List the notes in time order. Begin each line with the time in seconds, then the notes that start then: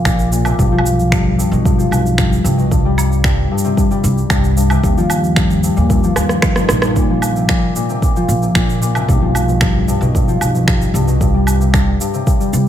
Already playing: F3 A#3
0.05 A#1 A#2, finger snap, kick, shaker
0.19 shaker
0.32 A#2, shaker
0.45 C3, low woodblock, shaker
0.58 B1 G2, kick, shaker
0.72 F3
0.78 low woodblock
0.86 shaker
0.99 shaker
1.12 G2, finger snap, kick, shaker
1.38 G2, shaker
1.51 B1 B2, shaker
1.65 G2, kick, shaker
1.78 F3, shaker
1.91 B1, low woodblock, shaker
2.06 shaker
2.18 G2, finger snap, kick, shaker
2.33 shaker
2.44 C2 G2, shaker
2.58 B2, shaker
2.71 G2, kick, shaker
2.85 G3
2.98 low woodblock, shaker
3.12 shaker
3.24 G2, finger snap, kick, shaker
3.51 G2
3.58 shaker
3.64 C3
3.77 G2, kick, shaker
3.91 G3, shaker
4.04 C2, shaker
4.18 shaker
4.30 C2 G2, finger snap, kick, shaker
4.44 shaker
4.57 G2, shaker
4.70 C3, low woodblock, shaker
4.83 D#2 G2, kick, shaker
4.97 F3, shaker
5.10 low woodblock, shaker
5.24 shaker
5.36 G2, finger snap, kick, shaker
5.50 shaker
5.64 G2, shaker
5.76 D#2 A#2, shaker
5.90 G2, kick, shaker
6.04 F3, shaker
6.16 D#2 F3, cross-stick, low woodblock, shaker
6.29 cross-stick, shaker
6.42 D#3, finger snap, kick, cross-stick, shaker
6.56 G2, cross-stick, shaker
6.69 A#1 A#3, cross-stick, shaker
6.82 G2, cross-stick, shaker
6.96 A#2, kick, shaker
7.10 F3
7.22 low woodblock, shaker
7.36 C3, shaker
7.49 A#2, finger snap, kick, shaker
7.76 A#2, shaker
7.89 C3, shaker
8.02 A#2, kick, shaker
8.16 F3, shaker
8.29 A#1, shaker
8.42 C3, shaker
8.55 A#1 A#2, finger snap, kick, shaker
8.70 shaker
8.82 A#2, shaker
8.95 C3, low woodblock, shaker
9.08 B1 G2, kick, shaker
9.21 F3
9.35 low woodblock, shaker
9.48 B2, shaker
9.61 G2, finger snap, kick, shaker
9.88 G2, shaker
10.01 B1 B2, shaker
10.15 G2, kick, shaker
10.28 F3, shaker
10.41 B1, low woodblock, shaker
10.55 B2, shaker
10.68 G2, finger snap, kick, shaker
10.82 shaker
10.94 C2 G2, shaker
11.08 B2, shaker
11.21 G2, kick, shaker
11.34 G3
11.47 low woodblock, shaker
11.60 C3, shaker
11.74 G2, finger snap, kick, shaker
12.01 G2, shaker
12.13 C3, shaker
12.27 G2, kick, shaker
12.40 G3, shaker
12.53 C2, shaker